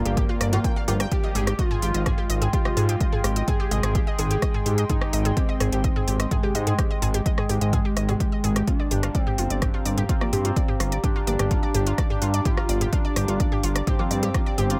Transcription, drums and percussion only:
0.05 closed hi-hat medium
0.17 kick loud
0.17 closed hi-hat medium
0.17 mid tom medium
0.41 cross-stick medium
0.41 open hi-hat loud
0.53 closed hi-hat medium
0.53 mid tom medium
0.64 kick loud
0.64 closed hi-hat medium
0.88 mid tom medium
0.88 open hi-hat loud
1.00 cross-stick medium
1.00 closed hi-hat medium
1.12 kick loud
1.12 closed hi-hat medium
1.35 mid tom medium
1.35 open hi-hat loud
1.47 cross-stick medium
1.47 closed hi-hat medium
1.59 kick loud
1.59 closed hi-hat medium
1.71 mid tom loud
1.82 open hi-hat loud
1.94 closed hi-hat medium
2.06 kick loud
2.06 cross-stick medium
2.06 closed hi-hat medium
2.06 mid tom medium
2.30 open hi-hat loud
2.42 closed hi-hat medium
2.42 mid tom loud
2.53 kick loud
2.53 closed hi-hat medium
2.65 cross-stick medium
2.77 mid tom medium
2.77 open hi-hat loud
2.89 closed hi-hat medium
3.00 kick loud
3.00 closed hi-hat medium
3.13 mid tom loud
3.24 cross-stick medium
3.24 open hi-hat loud
3.36 closed hi-hat medium
3.48 kick loud
3.48 closed hi-hat medium
3.48 mid tom loud
3.71 open hi-hat loud
3.83 cross-stick medium
3.83 closed hi-hat medium
3.83 mid tom medium
3.95 kick loud
3.95 closed hi-hat medium
4.19 mid tom loud
4.19 open hi-hat loud
4.31 closed hi-hat medium
4.42 kick loud
4.42 cross-stick medium
4.42 closed hi-hat medium
4.54 mid tom loud
4.66 open hi-hat loud
4.78 closed hi-hat medium
4.89 kick loud
4.89 closed hi-hat medium
4.89 mid tom medium
5.01 cross-stick medium
5.13 open hi-hat loud
5.25 closed hi-hat medium
5.25 mid tom loud
5.37 kick loud
5.37 closed hi-hat medium
5.60 cross-stick medium
5.60 mid tom loud
5.60 open hi-hat loud
5.72 closed hi-hat medium
5.84 kick loud
5.84 closed hi-hat medium
5.96 mid tom loud
6.08 open hi-hat loud
6.20 cross-stick medium
6.20 closed hi-hat medium
6.31 kick loud
6.31 closed hi-hat medium
6.31 mid tom loud
6.55 open hi-hat loud
6.67 closed hi-hat medium
6.67 mid tom loud
6.79 kick loud
6.79 cross-stick medium
6.79 closed hi-hat medium
7.02 mid tom loud
7.02 open hi-hat loud
7.14 closed hi-hat medium
7.26 kick loud
7.26 closed hi-hat medium
7.38 cross-stick medium
7.38 mid tom loud
7.49 open hi-hat loud
7.61 closed hi-hat medium
7.73 kick loud
7.73 closed hi-hat medium
7.73 mid tom loud
7.97 cross-stick medium
7.97 open hi-hat loud
8.09 mid tom loud
8.09 open hi-hat medium
8.20 kick loud
8.20 closed hi-hat medium
8.44 mid tom loud
8.44 open hi-hat loud
8.56 cross-stick medium
8.56 closed hi-hat medium
8.67 kick loud
8.67 closed hi-hat medium
8.91 mid tom medium
8.91 open hi-hat loud
9.03 cross-stick medium
9.03 closed hi-hat medium
9.15 kick loud
9.15 closed hi-hat medium
9.27 mid tom loud
9.38 open hi-hat loud
9.50 closed hi-hat medium
9.62 kick loud
9.62 cross-stick medium
9.62 closed hi-hat medium
9.62 mid tom medium
9.85 open hi-hat loud
9.98 closed hi-hat medium
9.98 mid tom medium
10.09 kick loud
10.09 closed hi-hat medium
10.21 cross-stick medium
10.33 mid tom medium
10.33 open hi-hat loud
10.45 closed hi-hat medium
10.56 kick loud
10.56 closed hi-hat medium
10.69 mid tom medium
10.80 cross-stick medium
10.80 open hi-hat loud
10.92 closed hi-hat medium
11.04 kick loud
11.04 closed hi-hat medium
11.04 mid tom medium
11.27 open hi-hat loud
11.39 cross-stick soft
11.39 closed hi-hat medium
11.39 mid tom medium
11.51 kick loud
11.51 closed hi-hat medium
11.74 mid tom medium
11.74 open hi-hat loud
11.87 closed hi-hat medium
11.98 kick loud
11.98 cross-stick medium
11.98 closed hi-hat medium
12.10 mid tom medium
12.22 open hi-hat loud
12.34 closed hi-hat medium
12.45 kick loud
12.45 closed hi-hat medium
12.45 mid tom medium
12.57 cross-stick medium
12.69 open hi-hat loud
12.81 closed hi-hat medium
12.81 mid tom medium
12.93 kick loud
12.93 closed hi-hat medium
13.16 cross-stick medium
13.16 mid tom medium
13.16 open hi-hat loud
13.28 closed hi-hat medium
13.40 kick loud
13.40 closed hi-hat medium
13.52 mid tom medium
13.63 open hi-hat loud
13.76 cross-stick medium
13.76 closed hi-hat medium
13.87 kick loud
13.87 closed hi-hat medium
13.87 mid tom medium
14.11 open hi-hat loud
14.23 closed hi-hat medium
14.23 mid tom medium
14.34 kick loud
14.34 cross-stick medium
14.34 closed hi-hat medium
14.58 mid tom medium
14.58 open hi-hat loud
14.70 closed hi-hat medium

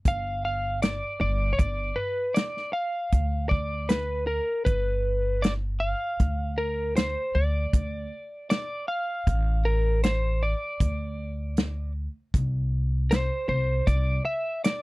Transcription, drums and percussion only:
0.05 kick loud
0.05 closed hi-hat medium
0.82 snare loud
0.82 closed hi-hat medium
1.59 kick loud
1.59 closed hi-hat medium
2.36 snare loud
2.36 closed hi-hat medium
2.57 snare soft
3.12 kick loud
3.12 closed hi-hat medium
3.51 kick medium
3.89 snare loud
3.89 closed hi-hat medium
4.66 kick loud
4.66 closed hi-hat medium
5.44 snare loud
5.44 closed hi-hat medium
6.20 kick loud
6.20 closed hi-hat medium
6.96 snare loud
6.96 closed hi-hat medium
7.73 kick loud
7.73 closed hi-hat medium
8.50 snare loud
8.50 closed hi-hat medium
9.27 kick loud
9.27 closed hi-hat medium
10.04 snare loud
10.04 closed hi-hat medium
10.80 kick loud
10.80 closed hi-hat medium
11.57 snare loud
11.57 closed hi-hat medium
12.34 kick loud
12.34 closed hi-hat medium
13.11 snare loud
13.11 closed hi-hat medium
13.87 kick loud
13.87 closed hi-hat medium
14.64 snare loud
14.64 closed hi-hat medium

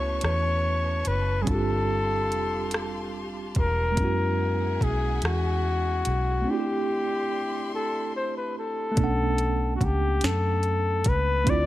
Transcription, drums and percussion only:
0.21 cross-stick medium
0.21 closed hi-hat medium
1.05 closed hi-hat medium
1.47 kick loud
1.47 closed hi-hat medium
2.32 closed hi-hat medium
2.71 cross-stick medium
2.71 closed hi-hat medium
3.55 kick medium
3.55 closed hi-hat medium
3.97 kick loud
3.97 closed hi-hat medium
4.81 kick medium
4.81 closed hi-hat medium
5.22 cross-stick medium
5.22 closed hi-hat medium
6.05 closed hi-hat medium
8.97 kick loud
8.97 closed hi-hat medium
9.38 closed hi-hat medium
9.81 kick medium
9.81 closed hi-hat medium
10.21 snare loud
10.21 closed hi-hat medium
10.63 closed hi-hat soft
11.04 kick loud
11.04 closed hi-hat medium
11.47 kick loud
11.47 closed hi-hat medium

